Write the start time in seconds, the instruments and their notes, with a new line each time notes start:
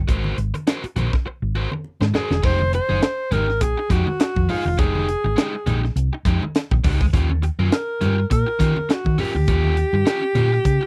0.08 fingered electric bass G#1, overdriven electric guitar F#4 A#4 C5, kick, closed hi-hat, low conga
0.24 high conga
0.38 fingered electric bass G#1, closed hi-hat, muted conga
0.54 muted overdriven electric guitar stroke, closed hi-hat, high conga
0.67 overdriven electric guitar F#4 A#4 C5, snare, closed hi-hat, muted conga
0.84 muted fingered electric bass stroke, muted overdriven electric guitar stroke, closed hi-hat
0.96 fingered electric bass A#1, overdriven electric guitar F#4 A#4 C5, closed hi-hat, muted conga, high conga, low conga
1.13 muted overdriven electric guitar stroke, kick, snare
1.26 muted overdriven electric guitar stroke, muted fingered electric bass stroke
1.42 fingered electric bass G#1
1.55 overdriven electric guitar F#4 A#4 C5, muted conga
1.72 muted overdriven electric guitar stroke, high conga
1.84 muted conga
2.00 fingered electric bass G#2, muted overdriven electric guitar stroke, snare, high conga
2.14 overdriven electric guitar F#4 A#4 C5, alto saxophone G#4, snare, muted conga, low conga
2.30 fingered electric bass E1, muted overdriven electric guitar stroke, snare, high conga
2.43 fingered electric bass F1, overdriven electric guitar G#3 D#4 G4, alto saxophone C5, kick, crash, muted conga, low conga
2.59 muted overdriven electric guitar stroke, high conga
2.73 alto saxophone C5, muted overdriven electric guitar stroke, closed hi-hat
2.89 fingered electric bass F#1, overdriven electric guitar G#3 D#4 G#4, high conga
3.02 muted overdriven electric guitar stroke, snare, closed hi-hat, muted conga
3.31 fingered electric bass G#1, overdriven electric guitar G#3 D#4 G4, alto saxophone A#4, closed hi-hat, high conga, low conga
3.48 muted overdriven electric guitar stroke, snare
3.61 fingered electric bass A#1, alto saxophone G#4, muted overdriven electric guitar stroke, kick, closed hi-hat, muted conga
3.77 muted overdriven electric guitar stroke
3.90 fingered electric bass F2, overdriven electric guitar G#3 D#4 G4, alto saxophone F#4, kick, snare, closed hi-hat, muted conga
4.07 muted overdriven electric guitar stroke, high conga
4.20 muted overdriven electric guitar stroke, snare, closed hi-hat, muted conga
4.36 fingered electric bass F2, kick, high conga
4.49 overdriven electric guitar G#3 D#4 G#4, alto saxophone F4, open hi-hat, low conga
4.65 fingered electric bass E1, muted overdriven electric guitar stroke, high conga
4.78 fingered electric bass F1, overdriven electric guitar G#3 D#4 G4, alto saxophone G#4, kick, closed hi-hat, muted conga, low conga
4.95 high conga
5.09 closed hi-hat, muted conga
5.24 fingered electric bass G#1, muted overdriven electric guitar stroke, high conga
5.36 overdriven electric guitar G#3 D#4 G4, snare, closed hi-hat
5.54 muted overdriven electric guitar stroke
5.66 fingered electric bass A#1, overdriven electric guitar G#3 D#4 G4, closed hi-hat, muted conga, high conga, low conga
5.83 muted overdriven electric guitar stroke, snare
5.96 fingered electric bass C2, closed hi-hat, muted conga
6.13 muted overdriven electric guitar stroke
6.25 fingered electric bass F2, overdriven electric guitar G#3 D#4 G4, kick, snare, closed hi-hat, muted conga
6.42 muted overdriven electric guitar stroke, high conga
6.55 snare, closed hi-hat, muted conga
6.71 fingered electric bass A#1, muted overdriven electric guitar stroke, kick, high conga
6.84 fingered electric bass C#2, overdriven electric guitar G#3 D#4 G4, kick, open hi-hat, muted conga, low conga
7.01 fingered electric bass D2, muted overdriven electric guitar stroke, kick, high conga
7.13 fingered electric bass D#2, overdriven electric guitar C#4 F4 G4, kick, closed hi-hat, low conga
7.30 muted overdriven electric guitar stroke, high conga
7.42 muted overdriven electric guitar stroke, closed hi-hat
7.59 fingered electric bass F#2, overdriven electric guitar C#4 F4 A#4, high conga
7.72 alto saxophone A#4, muted overdriven electric guitar stroke, snare, closed hi-hat, muted conga
8.01 fingered electric bass G2, overdriven electric guitar C#4 F4 G4, closed hi-hat, high conga, low conga
8.18 muted overdriven electric guitar stroke
8.30 fingered electric bass A#2, alto saxophone A#4, muted overdriven electric guitar stroke, kick, closed hi-hat, muted conga
8.46 muted overdriven electric guitar stroke
8.59 fingered electric bass D#3, overdriven electric guitar C#4 F4 G4, kick, snare, closed hi-hat
8.76 muted overdriven electric guitar stroke, high conga
8.89 alto saxophone F#4, muted overdriven electric guitar stroke, snare, closed hi-hat, muted conga
9.05 fingered electric bass D#3, kick, high conga
9.18 overdriven electric guitar C#4 F4 A#4, alto saxophone G4, open hi-hat, low conga
9.35 fingered electric bass D2, muted overdriven electric guitar stroke, high conga
9.48 fingered electric bass D#2, overdriven electric guitar C#4 F4 G4, kick, closed hi-hat, muted conga, low conga
9.64 high conga
9.77 closed hi-hat, muted conga
9.93 fingered electric bass G2, muted overdriven electric guitar stroke, high conga
10.05 overdriven electric guitar C#4 F4 G4, snare, closed hi-hat, muted conga
10.22 muted overdriven electric guitar stroke
10.35 fingered electric bass A#2, overdriven electric guitar C#4 F4 G4, closed hi-hat, muted conga, high conga, low conga
10.52 muted overdriven electric guitar stroke, snare
10.64 fingered electric bass C#3, kick, closed hi-hat, muted conga
10.81 muted overdriven electric guitar stroke